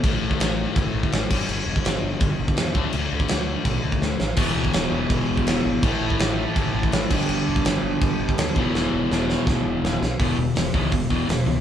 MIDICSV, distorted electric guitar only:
0, 0, Header, 1, 2, 480
1, 0, Start_track
1, 0, Tempo, 363196
1, 48, Time_signature, 4, 2, 24, 8
1, 15338, End_track
2, 0, Start_track
2, 0, Title_t, "Distorted electric guitar"
2, 0, Program_c, 0, 30
2, 45, Note_on_c, 0, 45, 91
2, 58, Note_on_c, 0, 52, 90
2, 69, Note_on_c, 0, 57, 100
2, 1707, Note_off_c, 0, 45, 0
2, 1713, Note_off_c, 0, 52, 0
2, 1719, Note_off_c, 0, 57, 0
2, 1731, Note_on_c, 0, 43, 83
2, 1742, Note_on_c, 0, 50, 104
2, 1758, Note_on_c, 0, 55, 101
2, 3608, Note_off_c, 0, 50, 0
2, 3624, Note_on_c, 0, 50, 92
2, 3626, Note_off_c, 0, 43, 0
2, 3632, Note_off_c, 0, 55, 0
2, 3638, Note_on_c, 0, 57, 96
2, 3653, Note_on_c, 0, 62, 93
2, 5531, Note_off_c, 0, 50, 0
2, 5538, Note_off_c, 0, 57, 0
2, 5546, Note_off_c, 0, 62, 0
2, 5771, Note_on_c, 0, 40, 96
2, 5784, Note_on_c, 0, 47, 86
2, 5800, Note_on_c, 0, 52, 99
2, 7685, Note_off_c, 0, 40, 0
2, 7691, Note_off_c, 0, 47, 0
2, 7696, Note_on_c, 0, 45, 91
2, 7700, Note_off_c, 0, 52, 0
2, 7715, Note_on_c, 0, 52, 107
2, 7724, Note_on_c, 0, 57, 102
2, 9369, Note_off_c, 0, 45, 0
2, 9379, Note_off_c, 0, 52, 0
2, 9383, Note_off_c, 0, 57, 0
2, 9385, Note_on_c, 0, 43, 94
2, 9394, Note_on_c, 0, 50, 112
2, 9412, Note_on_c, 0, 55, 94
2, 11296, Note_off_c, 0, 43, 0
2, 11300, Note_off_c, 0, 50, 0
2, 11306, Note_on_c, 0, 40, 95
2, 11309, Note_off_c, 0, 55, 0
2, 11328, Note_on_c, 0, 47, 89
2, 11335, Note_on_c, 0, 52, 112
2, 13219, Note_off_c, 0, 40, 0
2, 13230, Note_off_c, 0, 47, 0
2, 13234, Note_off_c, 0, 52, 0
2, 13474, Note_on_c, 0, 40, 82
2, 13480, Note_on_c, 0, 47, 86
2, 13487, Note_on_c, 0, 52, 90
2, 13690, Note_off_c, 0, 40, 0
2, 13701, Note_off_c, 0, 47, 0
2, 13706, Note_on_c, 0, 40, 77
2, 13708, Note_off_c, 0, 52, 0
2, 13716, Note_on_c, 0, 47, 70
2, 13929, Note_off_c, 0, 40, 0
2, 13934, Note_off_c, 0, 47, 0
2, 13948, Note_on_c, 0, 40, 75
2, 13952, Note_on_c, 0, 47, 87
2, 14170, Note_off_c, 0, 40, 0
2, 14172, Note_off_c, 0, 47, 0
2, 14190, Note_on_c, 0, 40, 79
2, 14193, Note_on_c, 0, 47, 98
2, 14199, Note_on_c, 0, 52, 78
2, 14412, Note_off_c, 0, 40, 0
2, 14416, Note_off_c, 0, 47, 0
2, 14426, Note_off_c, 0, 52, 0
2, 14427, Note_on_c, 0, 40, 75
2, 14432, Note_on_c, 0, 47, 83
2, 14650, Note_off_c, 0, 40, 0
2, 14653, Note_off_c, 0, 47, 0
2, 14670, Note_on_c, 0, 40, 89
2, 14674, Note_on_c, 0, 47, 92
2, 14679, Note_on_c, 0, 52, 86
2, 14888, Note_off_c, 0, 40, 0
2, 14894, Note_off_c, 0, 47, 0
2, 14904, Note_on_c, 0, 40, 70
2, 14906, Note_off_c, 0, 52, 0
2, 14910, Note_on_c, 0, 47, 77
2, 15130, Note_off_c, 0, 40, 0
2, 15132, Note_off_c, 0, 47, 0
2, 15152, Note_on_c, 0, 40, 68
2, 15156, Note_on_c, 0, 47, 68
2, 15338, Note_off_c, 0, 40, 0
2, 15338, Note_off_c, 0, 47, 0
2, 15338, End_track
0, 0, End_of_file